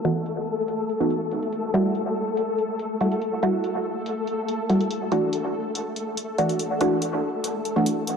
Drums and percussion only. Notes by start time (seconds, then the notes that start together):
0.05 closed hi-hat
0.26 closed hi-hat
0.68 closed hi-hat
0.89 closed hi-hat
1.10 closed hi-hat
1.31 closed hi-hat
1.43 closed hi-hat
1.53 closed hi-hat
1.74 closed hi-hat
1.95 closed hi-hat
2.37 closed hi-hat
2.58 closed hi-hat
2.79 closed hi-hat
3.01 closed hi-hat
3.12 closed hi-hat
3.22 closed hi-hat
3.43 closed hi-hat
3.64 closed hi-hat
4.06 closed hi-hat
4.27 closed hi-hat
4.48 closed hi-hat
4.70 closed hi-hat
4.81 closed hi-hat
4.91 closed hi-hat
5.12 closed hi-hat
5.33 closed hi-hat
5.75 closed hi-hat
5.96 closed hi-hat
6.17 closed hi-hat
6.38 closed hi-hat
6.49 closed hi-hat
6.59 closed hi-hat
6.81 closed hi-hat
7.02 closed hi-hat
7.44 closed hi-hat
7.65 closed hi-hat
7.86 closed hi-hat
8.07 closed hi-hat